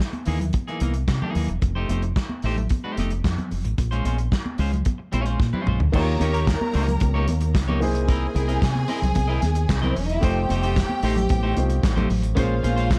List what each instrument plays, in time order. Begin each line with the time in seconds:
0.00 muted clean electric guitar stroke, kick, snare, clap, muted conga
0.13 muted clean electric guitar stroke, closed hi-hat, high conga
0.25 fingered electric bass D#2, clean electric guitar E3 A#3 D#4 G#4, open hi-hat
0.40 muted clean electric guitar stroke, closed hi-hat, low conga
0.53 muted clean electric guitar stroke, kick, closed hi-hat, high conga
0.68 clean electric guitar E3 A#3 D#4 G#4, closed hi-hat
0.80 fingered electric bass C2, clean electric guitar E3 A#3 D#4 A#4, closed hi-hat, muted conga, high conga
0.94 muted clean electric guitar stroke, closed hi-hat
1.08 fingered electric bass C3, muted clean electric guitar stroke, kick, snare, clap
1.22 clean electric guitar E3 A#3 D#4 G#4, high conga, low conga
1.35 fingered electric bass D#2, clean electric guitar E3 A#3 D#4 G#4, open hi-hat, muted conga, low conga
1.48 fingered electric bass E1, muted clean electric guitar stroke, closed hi-hat
1.62 fingered electric bass F1, muted clean electric guitar stroke, kick, closed hi-hat, muted conga
1.75 clean electric guitar A3 D#4 G4 C5
1.89 fingered electric bass F1, clean electric guitar A3 D#4 G4 C5, closed hi-hat, muted conga, high conga
2.02 muted clean electric guitar stroke, closed hi-hat
2.16 muted clean electric guitar stroke, kick, snare, clap
2.29 muted clean electric guitar stroke, high conga
2.42 fingered electric bass A1, clean electric guitar A3 D#4 G4 C5, open hi-hat
2.57 muted clean electric guitar stroke, closed hi-hat, low conga
2.69 muted clean electric guitar stroke, kick, closed hi-hat, muted conga, high conga
2.84 clean electric guitar A3 D#4 G4 C5
2.97 fingered electric bass F1, clean electric guitar A3 D#4 G4 D#5, snare, closed hi-hat, muted conga, high conga
3.10 muted clean electric guitar stroke, closed hi-hat
3.24 fingered electric bass F2, muted clean electric guitar stroke, kick, snare, clap, muted conga
3.38 muted clean electric guitar stroke, closed hi-hat, high conga, low conga
3.51 fingered electric bass F1, open hi-hat, muted conga, low conga
3.64 fingered electric bass A1, muted clean electric guitar stroke, closed hi-hat
3.78 fingered electric bass A#1, muted clean electric guitar stroke, kick, closed hi-hat, muted conga
3.91 clean electric guitar G#3 C#4 F4 C5, closed hi-hat
4.05 fingered electric bass A#1, clean electric guitar G#3 C#4 F4 C5, closed hi-hat, high conga
4.18 muted clean electric guitar stroke, closed hi-hat
4.32 muted clean electric guitar stroke, kick, snare, clap, muted conga
4.45 muted clean electric guitar stroke, high conga
4.58 fingered electric bass C#2, clean electric guitar G#3 C#4 F4 C5, open hi-hat, muted conga
4.72 muted clean electric guitar stroke, closed hi-hat, low conga
4.85 muted clean electric guitar stroke, kick, closed hi-hat, muted conga, high conga
4.98 muted clean electric guitar stroke
5.12 fingered electric bass A#1, clean electric guitar G#3 C#4 F4 C#5, closed hi-hat, high conga
5.26 clean electric guitar G#3 C#4 F4 C5, closed hi-hat
5.40 fingered electric bass A#2, kick, snare
5.53 clean electric guitar G#3 C#4 F4 C5, high conga, low conga
5.66 fingered electric bass A#1, clean electric guitar G#3 C#4 F4 C5, mid tom, muted conga, low conga
5.80 fingered electric bass D2, muted clean electric guitar stroke, floor tom
5.92 fingered electric bass D#2, grand piano A#3 D#4 F4 G4 C#5, clean electric guitar A#3 D#4 G4 C#5, string section A#4 A#5, kick, crash
6.20 fingered electric bass D#2, clean electric guitar A#3 D#4 G4 C#5, closed hi-hat, muted conga, high conga
6.33 clean electric guitar A#3 D#4 G4 C#5, closed hi-hat
6.47 kick, snare, clap, closed hi-hat, muted conga
6.60 muted clean electric guitar stroke, high conga
6.73 fingered electric bass C#2, clean electric guitar A#3 D#4 G4 C#5, open hi-hat, muted conga
6.86 muted clean electric guitar stroke, closed hi-hat, low conga
7.00 fingered electric bass C#2, muted clean electric guitar stroke, kick, closed hi-hat, muted conga, high conga
7.14 clean electric guitar A#3 D#4 G4 C#5
7.28 fingered electric bass D#2, muted clean electric guitar stroke, closed hi-hat, muted conga, high conga
7.41 muted clean electric guitar stroke, closed hi-hat
7.54 fingered electric bass C#2, muted clean electric guitar stroke, kick, snare, clap, closed hi-hat
7.68 clean electric guitar A#3 D#4 G4 C#5, high conga, low conga
7.80 fingered electric bass C2, grand piano A#3 D#4 E4 G#4 C5, string section G#4 G#5, muted clean electric guitar stroke, open hi-hat, muted conga, low conga
7.95 muted clean electric guitar stroke, closed hi-hat
8.08 clean electric guitar C4 E4 A#4 D#5, kick, closed hi-hat
8.34 fingered electric bass C2, clean electric guitar C4 E4 A#4 D#5, closed hi-hat, high conga
8.48 clean electric guitar C4 E4 A#4 D#5, closed hi-hat
8.62 fingered electric bass C3, kick, snare, clap, closed hi-hat
8.75 muted clean electric guitar stroke, closed hi-hat, high conga
8.88 clean electric guitar C4 E4 A#4 D#5, open hi-hat, muted conga
9.01 fingered electric bass C2, muted clean electric guitar stroke, closed hi-hat, low conga
9.15 fingered electric bass C2, muted clean electric guitar stroke, kick, closed hi-hat, muted conga, high conga
9.28 clean electric guitar C4 E4 A#4 D#5
9.42 fingered electric bass D#2, muted clean electric guitar stroke, snare, closed hi-hat, high conga
9.55 muted clean electric guitar stroke, closed hi-hat
9.69 fingered electric bass C2, muted clean electric guitar stroke, kick, snare, clap, closed hi-hat, muted conga
9.82 clean electric guitar C4 E4 A#4 D#5, closed hi-hat, high conga, low conga
9.87 string section C4 C5
9.96 fingered electric bass E1, string section C#4 C#5, muted clean electric guitar stroke, open hi-hat, muted conga, low conga
10.05 string section D#4 D#5
10.10 muted clean electric guitar stroke, closed hi-hat
10.14 string section E4 E5
10.21 fingered electric bass F1, grand piano A3 D#4 F4 G4 C5, clean electric guitar A3 D#4 G4 C5, string section G4 G5, kick, closed hi-hat, muted conga
10.49 fingered electric bass F1, clean electric guitar A3 D#4 G4 C5, closed hi-hat, muted conga, high conga
10.63 clean electric guitar A3 D#4 G4 C5, closed hi-hat
10.76 kick, snare, clap, closed hi-hat, muted conga
10.89 muted clean electric guitar stroke, high conga
11.03 fingered electric bass A1, clean electric guitar A3 D#4 G4 C5, open hi-hat, muted conga
11.16 muted clean electric guitar stroke, closed hi-hat, low conga
11.29 fingered electric bass A1, muted clean electric guitar stroke, kick, closed hi-hat, muted conga, high conga
11.43 clean electric guitar A3 D#4 G4 C5
11.56 fingered electric bass C2, grand piano A3 D#4 F4 G4 C5, muted clean electric guitar stroke, closed hi-hat, muted conga, high conga
11.69 muted clean electric guitar stroke, closed hi-hat
11.83 fingered electric bass A1, muted clean electric guitar stroke, kick, snare, clap, closed hi-hat, muted conga
11.96 clean electric guitar A3 D#4 G4 C5, closed hi-hat, high conga, low conga
12.09 fingered electric bass A1, muted clean electric guitar stroke, open hi-hat, muted conga, low conga
12.23 muted clean electric guitar stroke, closed hi-hat
12.35 fingered electric bass A#1, clean electric guitar G#3 C#4 F4 C5, grand piano A#3 C#4 F4 G#4 C5, string section F4 F5, kick, closed hi-hat, muted conga
12.63 fingered electric bass A#1, clean electric guitar G#3 C#4 F4 C5, closed hi-hat, high conga
12.76 clean electric guitar G#3 C#4 F4 C5, closed hi-hat
12.91 kick, snare, clap, closed hi-hat, muted conga